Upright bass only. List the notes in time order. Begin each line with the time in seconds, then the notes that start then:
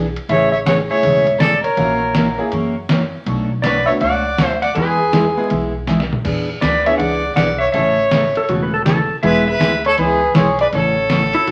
Already playing: B1
0.29 A1
1.03 E1
1.77 A#1
2.52 F#2
3.26 B1
4.01 C#2
4.38 D2
4.76 E2
5.51 B1
6.25 E2
6.63 D2
6.99 C#2
7.36 B1
7.74 A1
8.49 E1
9.24 E1
9.61 D2
9.98 C#2
10.36 B1
10.73 A1
11.48 E1